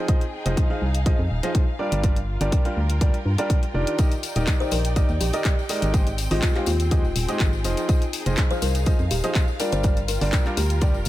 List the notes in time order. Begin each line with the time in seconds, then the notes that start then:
Already playing: C4 D#4 G#4 G5
0.08 F3 D#4 F4 G#4 C5 D#5, kick, closed hi-hat
0.21 closed hi-hat
0.46 F1 F3 D#4 F4 G#4 C5 D#5, closed hi-hat
0.57 F5, kick, closed hi-hat
0.70 F3 D#4 F4 G#4 C5 F5
0.82 C2
0.94 closed hi-hat
1.06 F3 D#4 F4 G#4 C5 D#5, kick, closed hi-hat
1.19 F2
1.30 D#1
1.43 F3 D#4 F4 G#4 C5 D#5, closed hi-hat
1.55 kick, closed hi-hat
1.79 G3 D4 F4 G4 A#4 D5
1.92 G1, closed hi-hat
2.04 G3 D4 F4 G4 A#4 D5, kick, closed hi-hat
2.16 closed hi-hat
2.25 A#4
2.41 G1 G3 D4 F4 G4 A#4 D5, closed hi-hat
2.47 G5
2.52 kick, closed hi-hat
2.65 G3 D4 F4 G4 A#4 F5, closed hi-hat
2.77 D2
2.90 closed hi-hat
3.01 G3 D4 F4 G4 A#4 D5, kick, closed hi-hat
3.14 closed hi-hat
3.25 G2
3.38 G3 D4 F4 G4 A#4 D5, closed hi-hat
3.50 kick, closed hi-hat
3.63 closed hi-hat
3.74 F1 D#3 D4 F4 G4 A#4 D5
3.87 closed hi-hat
3.98 D#3 D#4 G4 A#4 D5 D#5, kick, closed hi-hat, tambourine
4.04 D5
4.12 closed hi-hat, tambourine
4.23 open hi-hat, tambourine
4.36 D#1 D#3 D#4 G4 A#4 D5 D#5, closed hi-hat, tambourine
4.47 kick, clap, closed hi-hat, tambourine
4.60 D#3 D#4 G4 A#4 C5 D5 D#5, tambourine
4.71 A#1 A#4, open hi-hat, tambourine
4.85 closed hi-hat, tambourine
4.96 D#3 D#4 G4 A#4 D5 D#5, kick, closed hi-hat, tambourine
5.09 D#2, tambourine
5.21 A#1 G4, open hi-hat, tambourine
5.33 D#3 D#4 G4 A#4 D5 D#5, closed hi-hat, tambourine
5.45 kick, clap, closed hi-hat, tambourine
5.59 tambourine
5.69 G#3 D#4 G4 A#4 D5 D#5, open hi-hat, tambourine
5.82 G#1, closed hi-hat, tambourine
5.94 G#3 C4 D#4 G4 G#4 C5 D#5, kick, closed hi-hat, tambourine
6.07 closed hi-hat, tambourine
6.18 open hi-hat, tambourine
6.31 G#1 G#3 D#4 F4 G4 G#4 C5 D#5, open hi-hat, tambourine
6.38 G#4
6.42 kick, clap, closed hi-hat, tambourine
6.55 G#3 D#4 G4 G#4 C5 F5, clap, tambourine
6.66 D#2 F4, open hi-hat, tambourine
6.80 closed hi-hat, tambourine
6.91 G#3 D#4 G4 G#4 C5 D#5, kick, closed hi-hat, tambourine
7.04 D#1, tambourine
7.16 D#1, open hi-hat, tambourine
7.28 G#3 D#4 G4 G#4 C5 D#5, closed hi-hat, tambourine
7.40 G#1, kick, clap, closed hi-hat, tambourine
7.53 tambourine
7.64 F1 F3 D#4 F4 G#4 C5 D#5, open hi-hat, tambourine
7.77 closed hi-hat, tambourine
7.89 F3 D#4 F4 G#4 C5 D#5, kick, closed hi-hat, tambourine
8.02 closed hi-hat, tambourine
8.13 open hi-hat, tambourine
8.26 F1 F3 D#4 F4 G#4 C5 D#5, closed hi-hat, tambourine
8.37 kick, clap, closed hi-hat, tambourine
8.51 F3 D#4 F4 G#4 C5 F5, tambourine
8.62 C2 A#4, open hi-hat, tambourine
8.75 closed hi-hat, tambourine
8.86 F3 D#4 F4 G#4 C5 D#5, kick, closed hi-hat, tambourine
8.99 F2, tambourine
9.11 D#1 G4, open hi-hat, tambourine
9.24 F3 D#4 F4 G#4 C5 D#5, closed hi-hat, tambourine
9.35 kick, clap, closed hi-hat, tambourine
9.48 tambourine
9.60 G3 D4 F4 G4 A#4 D5, open hi-hat, tambourine
9.72 G1 A#4 C5, closed hi-hat, tambourine
9.83 G3 D4 F4 G4 A#4 D5, kick, closed hi-hat, tambourine
9.97 G5, closed hi-hat, tambourine
10.08 A#4, open hi-hat, tambourine
10.21 G1 G3 D4 F4 G4 A#4 D5, open hi-hat, tambourine
10.32 kick, clap, closed hi-hat, tambourine
10.45 G3 D4 F4 G4 A#4 F5, clap, tambourine
10.57 D2 G4, open hi-hat, tambourine
10.70 closed hi-hat, tambourine
10.81 G3 D4 F4 G4 A#4 D5, kick, closed hi-hat, tambourine
10.94 F1, tambourine
11.05 tambourine